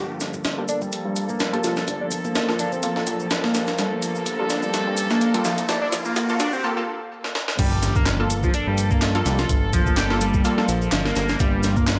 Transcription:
Already playing: G1 F3 A#3 A4, riser
0.20 snare, closed hi-hat, shaker
0.33 kick, shaker
0.44 snare, closed hi-hat, shaker
0.58 G3 A#3 F4 A4
0.68 D4, closed hi-hat, shaker
0.81 G3, kick, shaker
0.92 G2, closed hi-hat, shaker
1.05 G2
1.16 closed hi-hat, shaker
1.29 A#3, kick, shaker
1.40 snare, closed hi-hat, shaker
1.53 G3 A#3 F4 A4, closed hi-hat
1.64 C2 F3, snare, closed hi-hat, shaker
1.77 snare, shaker
1.87 G1 D4, kick, closed hi-hat, shaker
2.01 D4
2.11 kick, closed hi-hat, shaker
2.24 A#3, kick, shaker
2.35 A#3, snare, closed hi-hat, shaker
2.49 A#3 F4 A4, snare
2.59 D4, closed hi-hat, shaker
2.72 C4, kick, shaker
2.83 A#3 F4 A4, closed hi-hat, shaker
2.96 A#3 F4 A4, snare
3.07 A#1, closed hi-hat, shaker
3.20 shaker
3.31 G1, snare, closed hi-hat, shaker
3.44 A#3, snare
3.54 G1, snare, closed hi-hat, shaker
3.67 snare, shaker
3.78 G1 G3 A4, snare, closed hi-hat, shaker
4.02 closed hi-hat, shaker
4.15 shaker
4.26 closed hi-hat, shaker
4.39 G3 A#3 F4 A4
4.50 D4, snare, closed hi-hat, shaker
4.63 G3, shaker
4.73 G2, snare, closed hi-hat, shaker
4.87 G2
4.97 closed hi-hat, shaker
5.10 A#3, snare, shaker
5.21 closed hi-hat, shaker
5.34 G3 A#3 F4 A4, closed hi-hat
5.45 C2 F3, snare, shaker
5.58 closed hi-hat, shaker
5.69 G1 D4, snare, closed hi-hat, shaker
5.82 D4
5.92 snare, closed hi-hat, shaker
6.05 A#3, shaker
6.16 A#3, snare, closed hi-hat, shaker
6.29 A#3 F4 A4, shaker
6.40 D4, snare, closed hi-hat, shaker
6.53 C4, shaker
6.64 A#3 F4 A4
6.77 A#3 F4 A4
7.24 snare
7.35 snare
7.48 snare
7.59 G1 F3 G3 A#3 A4, kick, closed hi-hat, crash, impact, shaker
7.83 snare, closed hi-hat, shaker
7.95 A#3, kick, shaker
8.06 snare, clap, closed hi-hat, shaker
8.20 A#3 F4 A4
8.30 closed hi-hat, shaker
8.43 F3, kick, shaker
8.54 G2 D4, closed hi-hat, shaker
8.67 G2 G3
8.78 closed hi-hat, shaker
8.91 A#3, kick, shaker
9.02 snare, clap, closed hi-hat, shaker
9.15 A#3 F4 A4, closed hi-hat
9.26 C2 G3, snare, closed hi-hat, shaker
9.39 F4, snare, shaker
9.49 G1, kick, closed hi-hat, shaker
9.73 F3, kick, closed hi-hat, shaker
9.86 kick, shaker
9.97 G4, snare, clap, closed hi-hat, shaker
10.10 A#3 F4 A4, snare
10.21 G3, closed hi-hat, shaker
10.34 kick, shaker
10.45 A#3 F4 A4, closed hi-hat, shaker
10.58 G3 A#3 F4 A4, snare
10.68 A#1 F3, closed hi-hat, shaker
10.82 shaker
10.92 G1, snare, clap, closed hi-hat, shaker
11.05 A#3, snare
11.16 G1, snare, closed hi-hat, shaker
11.29 snare, shaker
11.40 G1 G3 F4, kick, closed hi-hat, shaker
11.63 snare, closed hi-hat, shaker
11.77 A#3, kick, shaker
11.87 snare, clap, closed hi-hat, shaker

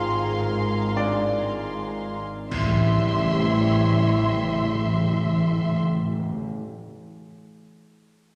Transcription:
Already playing: G#1 G#2 D#3 G#3 C4 F4 G#4 D5 F5 G#5 A#5 C6
0.96 D4 D5
2.50 A1 A2 C3 E3 G3 E4 G4 E5 C6, concert bass drum, crash, sub drop
2.57 A2
2.63 A2
2.70 A2
2.76 A2
2.82 A2
2.89 A2
2.95 A2
3.01 A2
3.08 A2
3.13 A2 C#5
3.20 A2
3.26 A2
3.32 A2
3.39 A2
3.45 A2
3.51 A2
3.58 A2
3.65 A2
3.71 A2
3.78 A2
3.84 A2
3.90 A2
3.97 A2
4.03 A2
4.10 A2
4.16 A2
4.22 A2
4.28 A2
4.34 A2
4.41 A2
4.47 A2
4.53 A2
4.60 A2
4.66 A2
4.73 A2
4.79 A2
4.85 A2
4.91 A2
4.97 A2
5.04 A2
5.11 A2
5.17 A2
5.24 A2
5.30 A2
5.37 A2
5.43 A2
5.50 A2
5.57 A2
5.63 A2
5.70 A2
5.76 A2
5.82 A2
5.88 A2
5.94 A2
6.00 A2
6.07 A2
6.13 A2
6.20 A2
6.26 A2
6.32 A2
6.38 A2
6.44 A2

